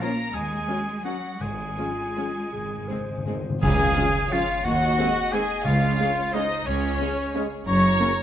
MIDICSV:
0, 0, Header, 1, 14, 480
1, 0, Start_track
1, 0, Key_signature, -5, "major"
1, 0, Tempo, 331309
1, 501, Time_signature, 3, 2, 24, 8
1, 985, Tempo, 367422
1, 4825, Tempo, 337838
1, 11373, End_track
2, 0, Start_track
2, 0, Title_t, "Flute"
2, 0, Program_c, 0, 73
2, 28, Note_on_c, 0, 82, 84
2, 506, Note_on_c, 0, 80, 90
2, 528, Note_off_c, 0, 82, 0
2, 1461, Note_off_c, 0, 80, 0
2, 1469, Note_on_c, 0, 78, 64
2, 1939, Note_on_c, 0, 80, 80
2, 1959, Note_off_c, 0, 78, 0
2, 4477, Note_off_c, 0, 80, 0
2, 4829, Note_on_c, 0, 80, 127
2, 5823, Note_on_c, 0, 77, 103
2, 5845, Note_off_c, 0, 80, 0
2, 6276, Note_on_c, 0, 78, 120
2, 6298, Note_off_c, 0, 77, 0
2, 7245, Note_on_c, 0, 80, 100
2, 7266, Note_off_c, 0, 78, 0
2, 7689, Note_off_c, 0, 80, 0
2, 7698, Note_on_c, 0, 77, 112
2, 8660, Note_off_c, 0, 77, 0
2, 8688, Note_on_c, 0, 75, 97
2, 9131, Note_off_c, 0, 75, 0
2, 9140, Note_on_c, 0, 73, 100
2, 10263, Note_off_c, 0, 73, 0
2, 10582, Note_on_c, 0, 85, 117
2, 11373, Note_off_c, 0, 85, 0
2, 11373, End_track
3, 0, Start_track
3, 0, Title_t, "Violin section"
3, 0, Program_c, 1, 48
3, 27, Note_on_c, 1, 82, 103
3, 492, Note_off_c, 1, 82, 0
3, 518, Note_on_c, 1, 80, 100
3, 1471, Note_off_c, 1, 80, 0
3, 1474, Note_on_c, 1, 78, 88
3, 1931, Note_off_c, 1, 78, 0
3, 1949, Note_on_c, 1, 80, 81
3, 4608, Note_off_c, 1, 80, 0
3, 4826, Note_on_c, 1, 80, 101
3, 5755, Note_off_c, 1, 80, 0
3, 5808, Note_on_c, 1, 77, 111
3, 6281, Note_off_c, 1, 77, 0
3, 6295, Note_on_c, 1, 78, 111
3, 7233, Note_off_c, 1, 78, 0
3, 7250, Note_on_c, 1, 80, 110
3, 7707, Note_on_c, 1, 77, 106
3, 7716, Note_off_c, 1, 80, 0
3, 8684, Note_off_c, 1, 77, 0
3, 8688, Note_on_c, 1, 75, 118
3, 9145, Note_off_c, 1, 75, 0
3, 9151, Note_on_c, 1, 73, 111
3, 10354, Note_off_c, 1, 73, 0
3, 10583, Note_on_c, 1, 85, 107
3, 11373, Note_off_c, 1, 85, 0
3, 11373, End_track
4, 0, Start_track
4, 0, Title_t, "Clarinet"
4, 0, Program_c, 2, 71
4, 2433, Note_on_c, 2, 65, 61
4, 3355, Note_off_c, 2, 65, 0
4, 3397, Note_on_c, 2, 68, 63
4, 3860, Note_on_c, 2, 72, 65
4, 3879, Note_off_c, 2, 68, 0
4, 4351, Note_off_c, 2, 72, 0
4, 4359, Note_on_c, 2, 72, 68
4, 4814, Note_off_c, 2, 72, 0
4, 11373, End_track
5, 0, Start_track
5, 0, Title_t, "Violin section"
5, 0, Program_c, 3, 48
5, 19, Note_on_c, 3, 65, 64
5, 27, Note_on_c, 3, 70, 63
5, 135, Note_off_c, 3, 65, 0
5, 143, Note_off_c, 3, 70, 0
5, 977, Note_on_c, 3, 70, 54
5, 981, Note_on_c, 3, 63, 52
5, 1082, Note_off_c, 3, 70, 0
5, 1086, Note_off_c, 3, 63, 0
5, 1467, Note_on_c, 3, 70, 53
5, 1471, Note_on_c, 3, 63, 54
5, 1572, Note_off_c, 3, 70, 0
5, 1576, Note_off_c, 3, 63, 0
5, 2423, Note_on_c, 3, 68, 46
5, 2427, Note_on_c, 3, 65, 53
5, 2527, Note_off_c, 3, 68, 0
5, 2532, Note_off_c, 3, 65, 0
5, 2925, Note_on_c, 3, 68, 51
5, 2930, Note_on_c, 3, 65, 50
5, 3030, Note_off_c, 3, 68, 0
5, 3034, Note_off_c, 3, 65, 0
5, 3873, Note_on_c, 3, 63, 49
5, 3875, Note_on_c, 3, 68, 46
5, 3978, Note_off_c, 3, 63, 0
5, 3980, Note_off_c, 3, 68, 0
5, 4362, Note_on_c, 3, 68, 49
5, 4364, Note_on_c, 3, 63, 48
5, 4466, Note_off_c, 3, 68, 0
5, 4469, Note_off_c, 3, 63, 0
5, 4833, Note_on_c, 3, 77, 111
5, 5758, Note_off_c, 3, 77, 0
5, 5808, Note_on_c, 3, 73, 100
5, 6282, Note_off_c, 3, 73, 0
5, 6292, Note_on_c, 3, 75, 106
5, 7232, Note_off_c, 3, 75, 0
5, 7249, Note_on_c, 3, 75, 100
5, 7707, Note_off_c, 3, 75, 0
5, 7715, Note_on_c, 3, 73, 98
5, 8688, Note_off_c, 3, 73, 0
5, 8697, Note_on_c, 3, 72, 102
5, 9159, Note_off_c, 3, 72, 0
5, 9163, Note_on_c, 3, 68, 93
5, 10337, Note_off_c, 3, 68, 0
5, 10585, Note_on_c, 3, 82, 115
5, 11373, Note_off_c, 3, 82, 0
5, 11373, End_track
6, 0, Start_track
6, 0, Title_t, "Oboe"
6, 0, Program_c, 4, 68
6, 12, Note_on_c, 4, 70, 85
6, 486, Note_on_c, 4, 68, 98
6, 508, Note_off_c, 4, 70, 0
6, 1457, Note_off_c, 4, 68, 0
6, 1463, Note_on_c, 4, 66, 65
6, 1945, Note_on_c, 4, 68, 80
6, 1965, Note_off_c, 4, 66, 0
6, 4606, Note_off_c, 4, 68, 0
6, 4827, Note_on_c, 4, 68, 127
6, 5821, Note_on_c, 4, 65, 99
6, 5843, Note_off_c, 4, 68, 0
6, 6283, Note_on_c, 4, 66, 116
6, 6304, Note_off_c, 4, 65, 0
6, 7243, Note_on_c, 4, 68, 100
6, 7264, Note_off_c, 4, 66, 0
6, 7700, Note_off_c, 4, 68, 0
6, 7708, Note_on_c, 4, 65, 109
6, 8684, Note_on_c, 4, 63, 92
6, 8705, Note_off_c, 4, 65, 0
6, 9154, Note_on_c, 4, 61, 106
6, 9175, Note_off_c, 4, 63, 0
6, 10356, Note_off_c, 4, 61, 0
6, 10574, Note_on_c, 4, 73, 111
6, 11373, Note_off_c, 4, 73, 0
6, 11373, End_track
7, 0, Start_track
7, 0, Title_t, "Trumpet section"
7, 0, Program_c, 5, 61
7, 4839, Note_on_c, 5, 68, 117
7, 5761, Note_off_c, 5, 68, 0
7, 5816, Note_on_c, 5, 65, 97
7, 6284, Note_on_c, 5, 66, 116
7, 6285, Note_off_c, 5, 65, 0
7, 7242, Note_on_c, 5, 68, 99
7, 7246, Note_off_c, 5, 66, 0
7, 7709, Note_on_c, 5, 65, 115
7, 7712, Note_off_c, 5, 68, 0
7, 8685, Note_off_c, 5, 65, 0
7, 8689, Note_on_c, 5, 63, 91
7, 9154, Note_off_c, 5, 63, 0
7, 9160, Note_on_c, 5, 61, 97
7, 10335, Note_off_c, 5, 61, 0
7, 10583, Note_on_c, 5, 73, 120
7, 11373, Note_off_c, 5, 73, 0
7, 11373, End_track
8, 0, Start_track
8, 0, Title_t, "French horn section"
8, 0, Program_c, 6, 60
8, 32, Note_on_c, 6, 61, 60
8, 34, Note_on_c, 6, 53, 65
8, 203, Note_off_c, 6, 61, 0
8, 205, Note_off_c, 6, 53, 0
8, 980, Note_on_c, 6, 61, 55
8, 987, Note_on_c, 6, 54, 56
8, 1153, Note_off_c, 6, 61, 0
8, 1159, Note_off_c, 6, 54, 0
8, 1458, Note_on_c, 6, 61, 52
8, 1465, Note_on_c, 6, 54, 54
8, 1630, Note_off_c, 6, 61, 0
8, 1635, Note_off_c, 6, 54, 0
8, 2420, Note_on_c, 6, 53, 55
8, 2423, Note_on_c, 6, 61, 50
8, 2603, Note_off_c, 6, 53, 0
8, 2605, Note_off_c, 6, 61, 0
8, 2931, Note_on_c, 6, 53, 48
8, 2938, Note_on_c, 6, 61, 50
8, 3103, Note_off_c, 6, 53, 0
8, 3108, Note_off_c, 6, 61, 0
8, 3882, Note_on_c, 6, 60, 51
8, 3884, Note_on_c, 6, 51, 47
8, 4057, Note_off_c, 6, 60, 0
8, 4059, Note_off_c, 6, 51, 0
8, 4384, Note_on_c, 6, 51, 45
8, 4385, Note_on_c, 6, 60, 49
8, 4548, Note_off_c, 6, 51, 0
8, 4549, Note_off_c, 6, 60, 0
8, 5321, Note_on_c, 6, 61, 78
8, 5328, Note_on_c, 6, 68, 75
8, 5500, Note_off_c, 6, 61, 0
8, 5505, Note_off_c, 6, 68, 0
8, 5817, Note_on_c, 6, 68, 72
8, 5823, Note_on_c, 6, 61, 72
8, 5988, Note_off_c, 6, 68, 0
8, 5991, Note_off_c, 6, 61, 0
8, 6756, Note_on_c, 6, 60, 80
8, 6761, Note_on_c, 6, 68, 76
8, 6933, Note_off_c, 6, 60, 0
8, 6937, Note_off_c, 6, 68, 0
8, 7264, Note_on_c, 6, 60, 68
8, 7264, Note_on_c, 6, 68, 66
8, 7429, Note_off_c, 6, 60, 0
8, 7430, Note_off_c, 6, 68, 0
8, 8198, Note_on_c, 6, 61, 78
8, 8199, Note_on_c, 6, 68, 79
8, 8376, Note_off_c, 6, 61, 0
8, 8376, Note_off_c, 6, 68, 0
8, 8687, Note_on_c, 6, 61, 73
8, 8695, Note_on_c, 6, 68, 70
8, 8856, Note_off_c, 6, 61, 0
8, 8862, Note_off_c, 6, 68, 0
8, 9633, Note_on_c, 6, 61, 74
8, 9636, Note_on_c, 6, 68, 73
8, 9809, Note_off_c, 6, 61, 0
8, 9812, Note_off_c, 6, 68, 0
8, 10113, Note_on_c, 6, 68, 73
8, 10116, Note_on_c, 6, 61, 73
8, 10283, Note_off_c, 6, 68, 0
8, 10286, Note_off_c, 6, 61, 0
8, 11047, Note_on_c, 6, 61, 78
8, 11048, Note_on_c, 6, 70, 78
8, 11227, Note_off_c, 6, 61, 0
8, 11228, Note_off_c, 6, 70, 0
8, 11373, End_track
9, 0, Start_track
9, 0, Title_t, "Viola section"
9, 0, Program_c, 7, 48
9, 18, Note_on_c, 7, 53, 66
9, 19, Note_on_c, 7, 61, 62
9, 134, Note_off_c, 7, 53, 0
9, 135, Note_off_c, 7, 61, 0
9, 992, Note_on_c, 7, 61, 53
9, 993, Note_on_c, 7, 54, 57
9, 1096, Note_off_c, 7, 61, 0
9, 1097, Note_off_c, 7, 54, 0
9, 1470, Note_on_c, 7, 54, 53
9, 1470, Note_on_c, 7, 61, 53
9, 1575, Note_off_c, 7, 54, 0
9, 1575, Note_off_c, 7, 61, 0
9, 2424, Note_on_c, 7, 61, 49
9, 2428, Note_on_c, 7, 56, 52
9, 2529, Note_off_c, 7, 61, 0
9, 2533, Note_off_c, 7, 56, 0
9, 2932, Note_on_c, 7, 56, 48
9, 2934, Note_on_c, 7, 61, 44
9, 3036, Note_off_c, 7, 56, 0
9, 3039, Note_off_c, 7, 61, 0
9, 3879, Note_on_c, 7, 56, 52
9, 3879, Note_on_c, 7, 60, 49
9, 3983, Note_off_c, 7, 56, 0
9, 3984, Note_off_c, 7, 60, 0
9, 4368, Note_on_c, 7, 56, 47
9, 4370, Note_on_c, 7, 60, 46
9, 4472, Note_off_c, 7, 56, 0
9, 4475, Note_off_c, 7, 60, 0
9, 5318, Note_on_c, 7, 61, 73
9, 5324, Note_on_c, 7, 53, 72
9, 5431, Note_off_c, 7, 61, 0
9, 5437, Note_off_c, 7, 53, 0
9, 5819, Note_on_c, 7, 53, 66
9, 5821, Note_on_c, 7, 61, 69
9, 5932, Note_off_c, 7, 53, 0
9, 5935, Note_off_c, 7, 61, 0
9, 6755, Note_on_c, 7, 56, 75
9, 6758, Note_on_c, 7, 60, 74
9, 6869, Note_off_c, 7, 56, 0
9, 6871, Note_off_c, 7, 60, 0
9, 7248, Note_on_c, 7, 60, 71
9, 7250, Note_on_c, 7, 56, 77
9, 7362, Note_off_c, 7, 60, 0
9, 7363, Note_off_c, 7, 56, 0
9, 8199, Note_on_c, 7, 56, 68
9, 8202, Note_on_c, 7, 61, 73
9, 8313, Note_off_c, 7, 56, 0
9, 8316, Note_off_c, 7, 61, 0
9, 8689, Note_on_c, 7, 56, 76
9, 8691, Note_on_c, 7, 61, 68
9, 8802, Note_off_c, 7, 56, 0
9, 8804, Note_off_c, 7, 61, 0
9, 9638, Note_on_c, 7, 56, 70
9, 9638, Note_on_c, 7, 61, 71
9, 9752, Note_off_c, 7, 56, 0
9, 9752, Note_off_c, 7, 61, 0
9, 10120, Note_on_c, 7, 61, 70
9, 10125, Note_on_c, 7, 56, 69
9, 10234, Note_off_c, 7, 61, 0
9, 10238, Note_off_c, 7, 56, 0
9, 11052, Note_on_c, 7, 58, 73
9, 11055, Note_on_c, 7, 61, 72
9, 11166, Note_off_c, 7, 58, 0
9, 11169, Note_off_c, 7, 61, 0
9, 11373, End_track
10, 0, Start_track
10, 0, Title_t, "Trombone section"
10, 0, Program_c, 8, 61
10, 5318, Note_on_c, 8, 53, 73
10, 5319, Note_on_c, 8, 56, 74
10, 5497, Note_off_c, 8, 53, 0
10, 5498, Note_off_c, 8, 56, 0
10, 5813, Note_on_c, 8, 53, 71
10, 5815, Note_on_c, 8, 56, 75
10, 5984, Note_off_c, 8, 53, 0
10, 5986, Note_off_c, 8, 56, 0
10, 6758, Note_on_c, 8, 51, 75
10, 6765, Note_on_c, 8, 56, 69
10, 6934, Note_off_c, 8, 51, 0
10, 6939, Note_off_c, 8, 56, 0
10, 7258, Note_on_c, 8, 51, 73
10, 7259, Note_on_c, 8, 56, 72
10, 7425, Note_off_c, 8, 51, 0
10, 7425, Note_off_c, 8, 56, 0
10, 8192, Note_on_c, 8, 56, 73
10, 8194, Note_on_c, 8, 49, 71
10, 8371, Note_off_c, 8, 56, 0
10, 8372, Note_off_c, 8, 49, 0
10, 8693, Note_on_c, 8, 49, 74
10, 8696, Note_on_c, 8, 56, 72
10, 8860, Note_off_c, 8, 49, 0
10, 8863, Note_off_c, 8, 56, 0
10, 9631, Note_on_c, 8, 56, 70
10, 9636, Note_on_c, 8, 49, 73
10, 9808, Note_off_c, 8, 56, 0
10, 9811, Note_off_c, 8, 49, 0
10, 10121, Note_on_c, 8, 49, 83
10, 10128, Note_on_c, 8, 56, 81
10, 10289, Note_off_c, 8, 49, 0
10, 10295, Note_off_c, 8, 56, 0
10, 11053, Note_on_c, 8, 49, 77
10, 11057, Note_on_c, 8, 54, 71
10, 11231, Note_off_c, 8, 49, 0
10, 11234, Note_off_c, 8, 54, 0
10, 11373, End_track
11, 0, Start_track
11, 0, Title_t, "Timpani"
11, 0, Program_c, 10, 47
11, 1935, Note_on_c, 10, 44, 96
11, 2626, Note_off_c, 10, 44, 0
11, 3413, Note_on_c, 10, 44, 39
11, 3488, Note_off_c, 10, 44, 0
11, 3504, Note_on_c, 10, 44, 39
11, 3589, Note_off_c, 10, 44, 0
11, 3605, Note_on_c, 10, 44, 39
11, 3691, Note_off_c, 10, 44, 0
11, 3707, Note_on_c, 10, 44, 47
11, 3797, Note_off_c, 10, 44, 0
11, 3812, Note_on_c, 10, 44, 49
11, 3903, Note_off_c, 10, 44, 0
11, 3918, Note_on_c, 10, 44, 54
11, 4009, Note_off_c, 10, 44, 0
11, 4025, Note_on_c, 10, 44, 54
11, 4121, Note_off_c, 10, 44, 0
11, 4136, Note_on_c, 10, 44, 60
11, 4232, Note_off_c, 10, 44, 0
11, 4248, Note_on_c, 10, 44, 74
11, 4335, Note_off_c, 10, 44, 0
11, 4350, Note_on_c, 10, 44, 76
11, 4440, Note_off_c, 10, 44, 0
11, 4456, Note_on_c, 10, 44, 82
11, 4541, Note_off_c, 10, 44, 0
11, 4557, Note_on_c, 10, 44, 89
11, 4651, Note_off_c, 10, 44, 0
11, 4667, Note_on_c, 10, 44, 99
11, 4762, Note_off_c, 10, 44, 0
11, 4833, Note_on_c, 10, 49, 127
11, 5514, Note_off_c, 10, 49, 0
11, 7708, Note_on_c, 10, 49, 108
11, 8390, Note_off_c, 10, 49, 0
11, 11373, End_track
12, 0, Start_track
12, 0, Title_t, "Cello section"
12, 0, Program_c, 11, 48
12, 20, Note_on_c, 11, 58, 89
12, 498, Note_off_c, 11, 58, 0
12, 502, Note_on_c, 11, 56, 80
12, 1445, Note_off_c, 11, 56, 0
12, 1469, Note_on_c, 11, 54, 74
12, 1938, Note_off_c, 11, 54, 0
12, 1949, Note_on_c, 11, 56, 68
12, 4556, Note_off_c, 11, 56, 0
12, 4842, Note_on_c, 11, 37, 98
12, 5234, Note_off_c, 11, 37, 0
12, 6282, Note_on_c, 11, 39, 91
12, 6674, Note_off_c, 11, 39, 0
12, 7713, Note_on_c, 11, 37, 93
12, 8110, Note_off_c, 11, 37, 0
12, 9162, Note_on_c, 11, 37, 90
12, 9551, Note_off_c, 11, 37, 0
12, 10587, Note_on_c, 11, 42, 99
12, 10976, Note_off_c, 11, 42, 0
12, 11373, End_track
13, 0, Start_track
13, 0, Title_t, "Double bass section"
13, 0, Program_c, 12, 48
13, 499, Note_on_c, 12, 39, 67
13, 898, Note_off_c, 12, 39, 0
13, 1933, Note_on_c, 12, 32, 65
13, 2338, Note_off_c, 12, 32, 0
13, 3400, Note_on_c, 12, 32, 58
13, 3790, Note_off_c, 12, 32, 0
13, 4826, Note_on_c, 12, 37, 89
13, 5226, Note_off_c, 12, 37, 0
13, 6282, Note_on_c, 12, 39, 88
13, 6674, Note_off_c, 12, 39, 0
13, 7717, Note_on_c, 12, 37, 86
13, 8113, Note_off_c, 12, 37, 0
13, 9151, Note_on_c, 12, 37, 85
13, 9546, Note_off_c, 12, 37, 0
13, 10578, Note_on_c, 12, 30, 91
13, 10972, Note_off_c, 12, 30, 0
13, 11373, End_track
14, 0, Start_track
14, 0, Title_t, "Drums"
14, 4835, Note_on_c, 9, 35, 90
14, 4835, Note_on_c, 9, 49, 73
14, 4977, Note_off_c, 9, 35, 0
14, 4977, Note_off_c, 9, 49, 0
14, 11373, End_track
0, 0, End_of_file